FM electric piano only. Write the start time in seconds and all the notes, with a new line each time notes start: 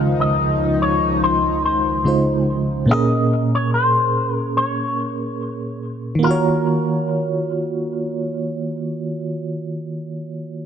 Already playing: C#3 G#3 D#4 F4 D#5
2.04 C#3 G#3 D#4 F4 C5
2.86 A#2 A#3 C#4
2.91 G#4 A#4
6.15 D#3 A#3
6.23 F4 F#4
6.31 C#5